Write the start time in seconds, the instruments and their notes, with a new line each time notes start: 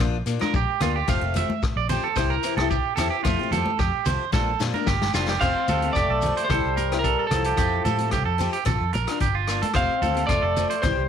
0.00 fingered electric bass A#1, steel-string acoustic guitar A#3 D4 F4, muted clean electric guitar stroke, kick
0.26 fingered electric bass A#2, steel-string acoustic guitar A#3 D4 F4, closed hi-hat, shekere
0.39 steel-string acoustic guitar D4 F4, clean electric guitar A#4, cross-stick, high conga
0.53 fingered electric bass A#1, clean electric guitar G4, kick, shekere
0.81 fingered electric bass D2, steel-string acoustic guitar A#3 D4, clean electric guitar F4, muted steel-string acoustic guitar stroke, cross-stick, closed hi-hat, low conga, shekere
0.96 clean electric guitar G4
1.08 fingered electric bass F1, steel-string acoustic guitar F3 A3 C4 G4, clean electric guitar F5, kick, cross-stick, shekere
1.21 fingered electric bass F1, steel-string acoustic guitar A3 C4, muted steel-string acoustic guitar stroke
1.34 steel-string acoustic guitar F3 A3 C4 G4, clean electric guitar E5, closed hi-hat, high conga, low conga, shekere
1.50 high conga
1.63 kick, cross-stick, shekere
1.76 fingered electric bass A#1, clean electric guitar D5
1.89 steel-string acoustic guitar F3 A3 C4 G4, clean electric guitar C5, closed hi-hat, low conga, shekere
2.04 clean electric guitar A4
2.16 fingered electric bass C2, steel-string acoustic guitar E3 C4 E4 G4, clean electric guitar C5, kick, cross-stick, shekere
2.30 clean electric guitar A#4
2.43 steel-string acoustic guitar E3 C4 E4 G4, closed hi-hat, shekere
2.57 fingered electric bass C2, steel-string acoustic guitar E4 G4, clean electric guitar A4, cross-stick, high conga
2.62 steel-string acoustic guitar C4
2.70 clean electric guitar G4, kick, shekere
2.96 fingered electric bass E2, steel-string acoustic guitar E3 C4 E4, clean electric guitar A4, cross-stick, closed hi-hat, low conga, shekere
3.00 steel-string acoustic guitar G4
3.10 clean electric guitar G4
3.24 fingered electric bass F2, steel-string acoustic guitar F3 A3 C4 G4, clean electric guitar F4, kick, cross-stick, shekere
3.39 steel-string acoustic guitar C4 G4
3.43 steel-string acoustic guitar A3
3.51 fingered electric bass F2, steel-string acoustic guitar F3 A3 C4, clean electric guitar A4, closed hi-hat, high conga, low conga, shekere
3.56 steel-string acoustic guitar G4
3.66 high conga
3.79 fingered electric bass F2, clean electric guitar G4, kick, cross-stick, shekere
4.05 fingered electric bass C2, steel-string acoustic guitar F3 A3 C4, clean electric guitar C5, closed hi-hat, low conga, shekere
4.10 steel-string acoustic guitar G4
4.32 fingered electric bass A#1, steel-string acoustic guitar F3 A#3 D4 F4, clean electric guitar A4, kick, snare, high conga, shekere
4.60 fingered electric bass A#2, steel-string acoustic guitar F3 A#3 D4 F4, snare, low conga, shekere
4.74 steel-string acoustic guitar A#3 D4, clean electric guitar A#4, high conga
4.86 fingered electric bass G1, clean electric guitar G4, kick, snare, shekere
5.02 snare, high conga
5.14 fingered electric bass F1, steel-string acoustic guitar F3 A#3 D4 F4, clean electric guitar F4, snare, shekere
5.28 clean electric guitar G4, snare
5.41 fingered electric bass F1, steel-string acoustic guitar F3 A3 C4 G4, trombone C4, clean electric guitar C5 F5, kick, cross-stick, crash, shekere
5.68 fingered electric bass D2, steel-string acoustic guitar F3 A3 C4 G4, clean electric guitar A4, closed hi-hat, high conga, low conga, shekere
5.82 steel-string acoustic guitar C4 G4, closed hi-hat
5.86 steel-string acoustic guitar A3
5.93 fingered electric bass F1, trombone A3, clean electric guitar G4 D5, kick, cross-stick, closed hi-hat, shekere
6.09 fingered electric bass B1, clean electric guitar A4
6.22 steel-string acoustic guitar F3, closed hi-hat, low conga, shekere
6.26 steel-string acoustic guitar A3 C4 G4
6.37 clean electric guitar C5, closed hi-hat
6.44 trombone G3, clean electric guitar C5
6.50 fingered electric bass C2, steel-string acoustic guitar E3 C4, clean electric guitar A4, kick, cross-stick, closed hi-hat, low conga, shekere
6.54 steel-string acoustic guitar E4 G4
6.64 fingered electric bass C2
6.77 clean electric guitar A#4, closed hi-hat, high conga, shekere
6.92 steel-string acoustic guitar C4 E4 G4, cross-stick, closed hi-hat
6.99 trombone G3, clean electric guitar A#4
7.04 clean electric guitar A4, kick, closed hi-hat, shekere
7.19 clean electric guitar A4
7.27 fingered electric bass C2, trombone F3, clean electric guitar A4, cross-stick, closed hi-hat
7.31 steel-string acoustic guitar E3 C4 E4 G4, low conga, shekere
7.44 clean electric guitar G4, closed hi-hat
7.57 fingered electric bass F2, steel-string acoustic guitar F3 A3 C4 G4, clean electric guitar G4, kick, cross-stick, closed hi-hat, shekere
7.85 fingered electric bass A2, steel-string acoustic guitar F3 A3 G4, clean electric guitar A4, closed hi-hat, high conga, low conga, shekere
7.98 steel-string acoustic guitar A3 C4 G4, closed hi-hat
8.11 fingered electric bass C2, clean electric guitar G4, kick, cross-stick, closed hi-hat, shekere
8.25 fingered electric bass F2, clean electric guitar A4
8.38 steel-string acoustic guitar F3 A3 C4 G4, closed hi-hat, low conga, shekere
8.53 clean electric guitar G4, closed hi-hat
8.65 fingered electric bass A#1, steel-string acoustic guitar F4, clean electric guitar A4, muted steel-string acoustic guitar stroke, kick, cross-stick, closed hi-hat, low conga, shekere
8.80 fingered electric bass F2
8.93 fingered electric bass A#1, clean electric guitar A#4, closed hi-hat, high conga, shekere
9.07 steel-string acoustic guitar D4 F4, cross-stick, closed hi-hat
9.20 fingered electric bass G1, clean electric guitar G4, kick, closed hi-hat, shekere
9.35 clean electric guitar F4
9.47 steel-string acoustic guitar A#3 D4, cross-stick, closed hi-hat, shekere
9.52 steel-string acoustic guitar F4
9.62 clean electric guitar A4, closed hi-hat, high conga
9.74 fingered electric bass F1, steel-string acoustic guitar F3 A3, trombone C4, clean electric guitar C5 F5, kick, cross-stick, closed hi-hat, shekere
9.78 steel-string acoustic guitar C4 G4
10.02 fingered electric bass D2, steel-string acoustic guitar F3 C4, clean electric guitar A4, closed hi-hat, high conga, low conga, shekere
10.06 steel-string acoustic guitar G4
10.14 steel-string acoustic guitar A3 C4 G4, closed hi-hat
10.27 fingered electric bass F1, trombone A3, clean electric guitar F4 D5, kick, cross-stick, closed hi-hat, shekere
10.42 fingered electric bass F1, clean electric guitar A4
10.56 steel-string acoustic guitar F3 A3 C4, muted steel-string acoustic guitar stroke, closed hi-hat, low conga, shekere
10.70 clean electric guitar C5, closed hi-hat
10.82 fingered electric bass C2, steel-string acoustic guitar E3 C4 E4 G4, trombone G3, clean electric guitar C5, muted clean electric guitar stroke, kick, cross-stick, closed hi-hat, low conga, shekere
10.97 fingered electric bass C2